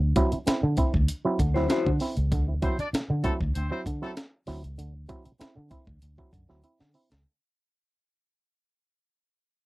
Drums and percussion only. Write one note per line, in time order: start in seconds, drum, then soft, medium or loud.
0.16 kick loud
0.16 closed hi-hat medium
0.32 closed hi-hat medium
0.47 snare loud
0.47 closed hi-hat loud
0.77 kick medium
0.77 closed hi-hat medium
0.94 kick medium
1.08 closed hi-hat loud
1.39 kick medium
1.39 closed hi-hat medium
1.56 snare soft
1.70 snare loud
1.70 closed hi-hat medium
1.87 kick medium
2.00 snare soft
2.00 open hi-hat medium
2.17 closed hi-hat medium
2.32 kick loud
2.32 closed hi-hat loud
2.62 kick loud
2.62 closed hi-hat medium
2.79 closed hi-hat medium
2.94 snare loud
2.94 closed hi-hat loud
3.24 kick loud
3.24 closed hi-hat medium
3.41 kick medium
3.55 closed hi-hat loud
3.86 kick medium
3.86 closed hi-hat medium
4.03 snare soft
4.17 snare loud
4.17 closed hi-hat medium
4.47 snare soft
4.47 open hi-hat medium
4.64 closed hi-hat medium
4.79 closed hi-hat loud
5.09 kick medium
5.09 closed hi-hat medium
5.25 closed hi-hat medium
5.41 snare loud
5.41 closed hi-hat loud
5.71 kick medium
5.71 closed hi-hat medium
5.87 kick medium
6.02 closed hi-hat loud
6.18 kick medium
6.33 kick medium
6.33 closed hi-hat medium
6.50 snare soft
6.64 closed hi-hat medium
6.81 snare medium
6.94 open hi-hat medium
7.11 snare loud
7.11 closed hi-hat medium